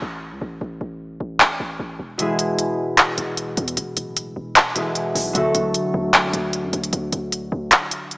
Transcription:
0.02 808-style bass A1
0.32 808-style bass C#2
0.41 808-style bass A1
0.61 808-style bass A1
0.81 808-style bass A1
1.20 808-style bass A1
1.40 clap
1.60 808-style bass A1
1.79 808-style bass A1
1.99 808-style bass E1
2.18 harp B2 E3 G#3 E4, closed hi-hat
2.22 harp G#4
2.39 closed hi-hat
2.59 closed hi-hat
2.98 clap, closed hi-hat
3.18 808-style bass E1, closed hi-hat
3.37 closed hi-hat
3.57 808-style bass E2, closed hi-hat
3.68 closed hi-hat
3.77 808-style bass E1, closed hi-hat
3.97 808-style bass D1, closed hi-hat
4.17 closed hi-hat
4.36 808-style bass E1
4.56 clap, closed hi-hat
4.75 808-style bass E1, harp B2 E3 G#3 E4 G#4, closed hi-hat
4.95 closed hi-hat
5.15 808-style bass B1, open hi-hat
5.33 808-style bass D2, harp D3 F#3 A3 F#4, closed hi-hat
5.37 harp A4
5.54 808-style bass D2, closed hi-hat
5.74 closed hi-hat
5.94 808-style bass D2
6.13 clap, closed hi-hat
6.24 808-style bass F#2
6.33 808-style bass D2, closed hi-hat
6.53 closed hi-hat
6.64 808-style bass F#2
6.73 808-style bass D2, closed hi-hat
6.84 closed hi-hat
6.93 808-style bass D2, closed hi-hat
7.12 808-style bass D2, closed hi-hat
7.32 closed hi-hat
7.52 808-style bass D2
7.71 clap, closed hi-hat
7.91 closed hi-hat
8.11 closed hi-hat

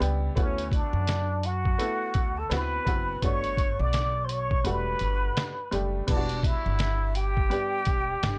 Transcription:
0.00 upright bass C#2, upright piano G3 B3 D4 G4, closed hi-hat
0.35 upright bass D2, upright piano A3 B3 E4 F#4, muted trumpet C#4, flute C#5, kick, closed hi-hat
0.58 closed hi-hat
0.72 muted trumpet D4, flute D5, kick, closed hi-hat
0.93 upright bass F#2
1.07 snare, closed hi-hat
1.43 muted trumpet F#4, flute F#5, closed hi-hat
1.65 kick
1.78 upright piano A3 B3 E4 A4, closed hi-hat
2.14 upright bass D2, kick, closed hi-hat
2.37 muted trumpet A4, flute A5
2.50 upright bass D2, upright piano B3 C4 E4 F#4, muted trumpet B4, flute B5, snare, closed hi-hat
2.85 upright bass F#1, upright piano B3 C4 E4 F#4, kick, closed hi-hat
3.22 upright bass G1, upright piano A3 B3 D4 F#4, muted trumpet C#5, flute C#6, kick, closed hi-hat
3.44 closed hi-hat
3.57 kick, closed hi-hat
3.79 upright bass B1, muted trumpet D5, flute D6
3.93 snare, closed hi-hat
4.24 muted trumpet C5, flute C6
4.29 muted trumpet C#5, flute C#6, closed hi-hat
4.51 kick
4.64 upright bass E1, upright piano G3 A3 D4 F#4, muted trumpet B4, flute B5, closed hi-hat
4.99 upright bass G1, closed hi-hat
5.37 snare, closed hi-hat
5.71 upright bass F#1, upright piano G3 A3 D4 G4, closed hi-hat
6.07 upright bass E1, upright piano G3 B3 D4 E4, muted trumpet D4, flute D5, kick, closed hi-hat, crash
6.16 upright piano F#4
6.29 closed hi-hat
6.43 muted trumpet E4, flute E5, kick, closed hi-hat
6.66 upright bass G1
6.79 snare, closed hi-hat
7.15 muted trumpet G4, flute G5, closed hi-hat
7.37 kick
7.50 upright piano G3 B3 D4 G4, closed hi-hat
7.85 upright bass E1, kick, closed hi-hat
8.23 upright bass G1, snare, closed hi-hat

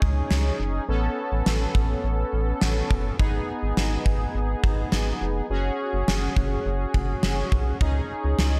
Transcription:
Already playing: analog polysynth C#4 D#4 G#4
0.02 analog synth bass C#2, kick
0.31 analog synth bass C#2, snare
0.60 analog synth bass F#1
0.88 analog synth bass A1, analog polysynth B3 C#4 A4
1.32 analog synth bass A1
1.46 analog synth bass A1, snare
1.75 analog synth bass A1, kick
2.04 analog synth bass A1
2.33 analog synth bass A1
2.61 analog synth bass A1, snare
2.91 analog synth bass F#1, kick
3.19 analog synth bass G#1, analog polysynth B3 D#4 G#4, kick
3.63 analog synth bass G#1
3.77 analog synth bass G#1, snare
4.06 analog synth bass G#1, kick
4.35 analog synth bass G#1
4.64 analog synth bass G#1, kick
4.92 analog synth bass G#1, snare
5.21 analog synth bass F1
5.50 analog synth bass F#1, analog polysynth C#4 F#4 G#4
5.93 analog synth bass F#1
6.08 analog synth bass F#1, snare
6.36 analog synth bass F#1, kick
6.65 analog synth bass F#1
6.94 analog synth bass F#1, kick
7.23 analog synth bass F#1, snare
7.52 analog synth bass B1, kick
7.81 analog synth bass C#2, analog polysynth C#4 D#4 G#4, kick
8.24 analog synth bass C#2
8.38 analog synth bass C#2, snare

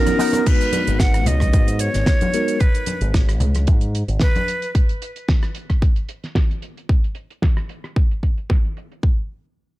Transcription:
Already playing: tine electric piano B3 C#4 D#4 F#4 A#4, analog synth pad B3 F#5 A#5 D#6, flute A#4
0.06 cross-stick, closed hi-hat, high conga, cabasa
0.19 clean electric guitar B3 D#4 F#4 A#4, open hi-hat, cabasa
0.33 closed hi-hat, muted conga, cabasa
0.45 tine electric piano G#3 B3 F#4 B4, flute B4, kick, closed hi-hat, crash
0.61 closed hi-hat
0.73 closed hi-hat, high conga
0.87 picked electric bass G#1, closed hi-hat
1.00 flute F#5, kick, snare, closed hi-hat
1.14 cross-stick, closed hi-hat
1.26 picked electric bass C#2, flute D#5, closed hi-hat, low conga
1.40 kick, cross-stick, closed hi-hat, high conga
1.53 picked electric bass G#2, kick, closed hi-hat
1.68 closed hi-hat
1.79 flute C#5, closed hi-hat
1.94 picked electric bass G#1, snare, closed hi-hat
2.06 kick, snare, closed hi-hat
2.21 closed hi-hat, high conga
2.33 tine electric piano G#3 B3 D#4 F#4 A#4, closed hi-hat
2.48 closed hi-hat
2.60 flute B4, kick, closed hi-hat
2.75 closed hi-hat
2.86 closed hi-hat, high conga
3.01 picked electric bass G#1, closed hi-hat
3.14 kick, snare, closed hi-hat
3.29 cross-stick, closed hi-hat
3.40 picked electric bass C#2, closed hi-hat, low conga
3.55 cross-stick, closed hi-hat, high conga
3.67 picked electric bass G#2, kick, closed hi-hat
3.81 closed hi-hat
3.95 closed hi-hat
4.08 picked electric bass G#1, closed hi-hat
4.20 flute B4, kick, snare, closed hi-hat
4.35 closed hi-hat, high conga
4.48 closed hi-hat
4.62 closed hi-hat
4.75 kick, closed hi-hat
4.89 closed hi-hat
5.02 closed hi-hat
5.16 closed hi-hat
5.28 kick, snare, closed hi-hat
5.43 cross-stick, closed hi-hat
5.55 closed hi-hat
5.70 kick, cross-stick, closed hi-hat
5.82 kick, closed hi-hat
5.96 closed hi-hat
6.09 closed hi-hat
6.24 snare, closed hi-hat
6.35 kick, snare, closed hi-hat
6.51 closed hi-hat
6.62 closed hi-hat
6.77 closed hi-hat
6.89 kick, closed hi-hat
7.04 closed hi-hat
7.15 closed hi-hat
7.30 closed hi-hat
7.42 kick, snare, closed hi-hat
7.57 cross-stick, closed hi-hat
7.69 closed hi-hat
7.84 cross-stick, closed hi-hat
7.96 kick, closed hi-hat
8.11 closed hi-hat
8.23 kick, closed hi-hat
8.38 closed hi-hat
8.49 kick, snare, closed hi-hat
8.65 closed hi-hat
8.77 closed hi-hat
8.92 closed hi-hat
9.03 kick

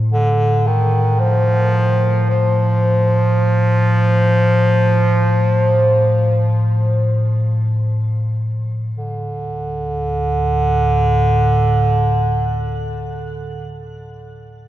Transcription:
Already playing: synth drone A2
0.13 bass clarinet D3
0.67 bass clarinet D#3
1.20 bass clarinet F3
2.30 bass clarinet F3
8.97 synth drone D2 A2, bass clarinet D3

